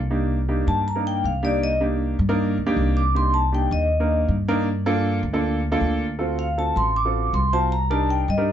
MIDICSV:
0, 0, Header, 1, 4, 480
1, 0, Start_track
1, 0, Tempo, 380469
1, 132, Time_signature, 4, 2, 24, 8
1, 10751, End_track
2, 0, Start_track
2, 0, Title_t, "Vibraphone"
2, 0, Program_c, 0, 11
2, 857, Note_on_c, 0, 81, 93
2, 1087, Note_off_c, 0, 81, 0
2, 1108, Note_on_c, 0, 82, 99
2, 1333, Note_off_c, 0, 82, 0
2, 1350, Note_on_c, 0, 79, 103
2, 1574, Note_off_c, 0, 79, 0
2, 1584, Note_on_c, 0, 77, 84
2, 1811, Note_off_c, 0, 77, 0
2, 1826, Note_on_c, 0, 74, 85
2, 2051, Note_off_c, 0, 74, 0
2, 2063, Note_on_c, 0, 75, 95
2, 2203, Note_off_c, 0, 75, 0
2, 3744, Note_on_c, 0, 86, 96
2, 3970, Note_off_c, 0, 86, 0
2, 3993, Note_on_c, 0, 84, 105
2, 4213, Note_on_c, 0, 81, 95
2, 4214, Note_off_c, 0, 84, 0
2, 4444, Note_off_c, 0, 81, 0
2, 4473, Note_on_c, 0, 79, 87
2, 4694, Note_off_c, 0, 79, 0
2, 4699, Note_on_c, 0, 75, 95
2, 5364, Note_off_c, 0, 75, 0
2, 8059, Note_on_c, 0, 77, 93
2, 8287, Note_off_c, 0, 77, 0
2, 8310, Note_on_c, 0, 81, 93
2, 8533, Note_off_c, 0, 81, 0
2, 8544, Note_on_c, 0, 84, 100
2, 8770, Note_off_c, 0, 84, 0
2, 8786, Note_on_c, 0, 86, 103
2, 9225, Note_off_c, 0, 86, 0
2, 9260, Note_on_c, 0, 84, 92
2, 9488, Note_off_c, 0, 84, 0
2, 9504, Note_on_c, 0, 81, 90
2, 9730, Note_off_c, 0, 81, 0
2, 9742, Note_on_c, 0, 82, 102
2, 9969, Note_off_c, 0, 82, 0
2, 9978, Note_on_c, 0, 81, 98
2, 10207, Note_off_c, 0, 81, 0
2, 10225, Note_on_c, 0, 79, 87
2, 10451, Note_off_c, 0, 79, 0
2, 10471, Note_on_c, 0, 75, 88
2, 10751, Note_off_c, 0, 75, 0
2, 10751, End_track
3, 0, Start_track
3, 0, Title_t, "Upright piano"
3, 0, Program_c, 1, 0
3, 132, Note_on_c, 1, 58, 79
3, 134, Note_on_c, 1, 62, 75
3, 135, Note_on_c, 1, 67, 83
3, 136, Note_on_c, 1, 63, 73
3, 468, Note_off_c, 1, 58, 0
3, 469, Note_off_c, 1, 62, 0
3, 470, Note_off_c, 1, 63, 0
3, 470, Note_off_c, 1, 67, 0
3, 613, Note_on_c, 1, 67, 84
3, 614, Note_on_c, 1, 58, 77
3, 614, Note_on_c, 1, 63, 72
3, 615, Note_on_c, 1, 62, 75
3, 1032, Note_off_c, 1, 67, 0
3, 1033, Note_off_c, 1, 58, 0
3, 1033, Note_off_c, 1, 63, 0
3, 1034, Note_off_c, 1, 62, 0
3, 1207, Note_on_c, 1, 70, 79
3, 1208, Note_on_c, 1, 62, 64
3, 1214, Note_on_c, 1, 58, 75
3, 1216, Note_on_c, 1, 63, 69
3, 1629, Note_off_c, 1, 70, 0
3, 1630, Note_off_c, 1, 62, 0
3, 1632, Note_off_c, 1, 58, 0
3, 1633, Note_off_c, 1, 63, 0
3, 1800, Note_on_c, 1, 58, 83
3, 1801, Note_on_c, 1, 67, 97
3, 1805, Note_on_c, 1, 62, 74
3, 1806, Note_on_c, 1, 63, 76
3, 2141, Note_off_c, 1, 58, 0
3, 2142, Note_off_c, 1, 67, 0
3, 2144, Note_off_c, 1, 62, 0
3, 2144, Note_off_c, 1, 63, 0
3, 2279, Note_on_c, 1, 67, 86
3, 2280, Note_on_c, 1, 58, 80
3, 2282, Note_on_c, 1, 62, 74
3, 2282, Note_on_c, 1, 63, 73
3, 2704, Note_off_c, 1, 67, 0
3, 2705, Note_off_c, 1, 58, 0
3, 2706, Note_off_c, 1, 62, 0
3, 2706, Note_off_c, 1, 63, 0
3, 2885, Note_on_c, 1, 63, 87
3, 2886, Note_on_c, 1, 62, 89
3, 2888, Note_on_c, 1, 70, 104
3, 2889, Note_on_c, 1, 58, 91
3, 3224, Note_off_c, 1, 62, 0
3, 3224, Note_off_c, 1, 63, 0
3, 3225, Note_off_c, 1, 58, 0
3, 3225, Note_off_c, 1, 70, 0
3, 3362, Note_on_c, 1, 58, 104
3, 3363, Note_on_c, 1, 62, 96
3, 3363, Note_on_c, 1, 63, 93
3, 3363, Note_on_c, 1, 67, 107
3, 3786, Note_off_c, 1, 58, 0
3, 3786, Note_off_c, 1, 62, 0
3, 3786, Note_off_c, 1, 63, 0
3, 3786, Note_off_c, 1, 67, 0
3, 3967, Note_on_c, 1, 63, 66
3, 3968, Note_on_c, 1, 62, 64
3, 3970, Note_on_c, 1, 58, 69
3, 3971, Note_on_c, 1, 67, 81
3, 4304, Note_off_c, 1, 63, 0
3, 4305, Note_off_c, 1, 62, 0
3, 4306, Note_off_c, 1, 58, 0
3, 4306, Note_off_c, 1, 67, 0
3, 4446, Note_on_c, 1, 62, 68
3, 4446, Note_on_c, 1, 67, 73
3, 4447, Note_on_c, 1, 58, 65
3, 4448, Note_on_c, 1, 63, 64
3, 4867, Note_off_c, 1, 62, 0
3, 4868, Note_off_c, 1, 58, 0
3, 4868, Note_off_c, 1, 63, 0
3, 4868, Note_off_c, 1, 67, 0
3, 5045, Note_on_c, 1, 58, 74
3, 5045, Note_on_c, 1, 62, 65
3, 5045, Note_on_c, 1, 63, 72
3, 5052, Note_on_c, 1, 70, 85
3, 5467, Note_off_c, 1, 58, 0
3, 5467, Note_off_c, 1, 62, 0
3, 5467, Note_off_c, 1, 63, 0
3, 5470, Note_off_c, 1, 70, 0
3, 5657, Note_on_c, 1, 58, 99
3, 5658, Note_on_c, 1, 62, 95
3, 5658, Note_on_c, 1, 63, 94
3, 5658, Note_on_c, 1, 70, 111
3, 5893, Note_off_c, 1, 58, 0
3, 5893, Note_off_c, 1, 62, 0
3, 5893, Note_off_c, 1, 63, 0
3, 5893, Note_off_c, 1, 70, 0
3, 6133, Note_on_c, 1, 58, 106
3, 6134, Note_on_c, 1, 69, 109
3, 6135, Note_on_c, 1, 62, 97
3, 6137, Note_on_c, 1, 65, 89
3, 6551, Note_off_c, 1, 58, 0
3, 6551, Note_off_c, 1, 69, 0
3, 6552, Note_off_c, 1, 62, 0
3, 6553, Note_off_c, 1, 65, 0
3, 6725, Note_on_c, 1, 65, 81
3, 6729, Note_on_c, 1, 62, 87
3, 6731, Note_on_c, 1, 58, 96
3, 6732, Note_on_c, 1, 69, 103
3, 7063, Note_off_c, 1, 65, 0
3, 7065, Note_off_c, 1, 62, 0
3, 7066, Note_off_c, 1, 58, 0
3, 7067, Note_off_c, 1, 69, 0
3, 7211, Note_on_c, 1, 58, 99
3, 7214, Note_on_c, 1, 62, 91
3, 7214, Note_on_c, 1, 65, 85
3, 7216, Note_on_c, 1, 69, 113
3, 7630, Note_off_c, 1, 58, 0
3, 7632, Note_off_c, 1, 62, 0
3, 7632, Note_off_c, 1, 65, 0
3, 7632, Note_off_c, 1, 69, 0
3, 7806, Note_on_c, 1, 66, 73
3, 7806, Note_on_c, 1, 69, 89
3, 7807, Note_on_c, 1, 60, 85
3, 7807, Note_on_c, 1, 65, 77
3, 8144, Note_off_c, 1, 60, 0
3, 8144, Note_off_c, 1, 65, 0
3, 8144, Note_off_c, 1, 66, 0
3, 8144, Note_off_c, 1, 69, 0
3, 8296, Note_on_c, 1, 65, 62
3, 8298, Note_on_c, 1, 60, 67
3, 8298, Note_on_c, 1, 69, 75
3, 8304, Note_on_c, 1, 66, 64
3, 8713, Note_off_c, 1, 65, 0
3, 8714, Note_off_c, 1, 60, 0
3, 8714, Note_off_c, 1, 69, 0
3, 8717, Note_off_c, 1, 66, 0
3, 8898, Note_on_c, 1, 69, 80
3, 8899, Note_on_c, 1, 65, 70
3, 8900, Note_on_c, 1, 66, 71
3, 8901, Note_on_c, 1, 60, 75
3, 9314, Note_off_c, 1, 69, 0
3, 9315, Note_off_c, 1, 65, 0
3, 9315, Note_off_c, 1, 66, 0
3, 9316, Note_off_c, 1, 60, 0
3, 9495, Note_on_c, 1, 60, 84
3, 9496, Note_on_c, 1, 65, 79
3, 9499, Note_on_c, 1, 66, 80
3, 9499, Note_on_c, 1, 72, 98
3, 9733, Note_off_c, 1, 60, 0
3, 9733, Note_off_c, 1, 65, 0
3, 9735, Note_off_c, 1, 66, 0
3, 9735, Note_off_c, 1, 72, 0
3, 9971, Note_on_c, 1, 70, 92
3, 9972, Note_on_c, 1, 67, 75
3, 9975, Note_on_c, 1, 62, 86
3, 9977, Note_on_c, 1, 63, 82
3, 10391, Note_off_c, 1, 67, 0
3, 10391, Note_off_c, 1, 70, 0
3, 10393, Note_off_c, 1, 62, 0
3, 10394, Note_off_c, 1, 63, 0
3, 10566, Note_on_c, 1, 62, 80
3, 10569, Note_on_c, 1, 63, 70
3, 10569, Note_on_c, 1, 67, 78
3, 10569, Note_on_c, 1, 70, 86
3, 10751, Note_off_c, 1, 62, 0
3, 10751, Note_off_c, 1, 63, 0
3, 10751, Note_off_c, 1, 67, 0
3, 10751, Note_off_c, 1, 70, 0
3, 10751, End_track
4, 0, Start_track
4, 0, Title_t, "Upright bass"
4, 0, Program_c, 2, 32
4, 0, Note_on_c, 2, 36, 90
4, 774, Note_off_c, 2, 36, 0
4, 846, Note_on_c, 2, 43, 89
4, 1518, Note_off_c, 2, 43, 0
4, 1564, Note_on_c, 2, 36, 87
4, 2693, Note_off_c, 2, 36, 0
4, 2762, Note_on_c, 2, 43, 99
4, 3212, Note_off_c, 2, 43, 0
4, 3247, Note_on_c, 2, 38, 76
4, 3472, Note_off_c, 2, 38, 0
4, 3488, Note_on_c, 2, 36, 98
4, 4614, Note_off_c, 2, 36, 0
4, 4681, Note_on_c, 2, 39, 96
4, 5354, Note_off_c, 2, 39, 0
4, 5405, Note_on_c, 2, 43, 96
4, 6532, Note_off_c, 2, 43, 0
4, 6594, Note_on_c, 2, 38, 96
4, 7271, Note_off_c, 2, 38, 0
4, 7326, Note_on_c, 2, 38, 93
4, 8453, Note_off_c, 2, 38, 0
4, 8526, Note_on_c, 2, 33, 92
4, 9198, Note_off_c, 2, 33, 0
4, 9249, Note_on_c, 2, 36, 89
4, 10376, Note_off_c, 2, 36, 0
4, 10447, Note_on_c, 2, 43, 94
4, 10751, Note_off_c, 2, 43, 0
4, 10751, End_track
0, 0, End_of_file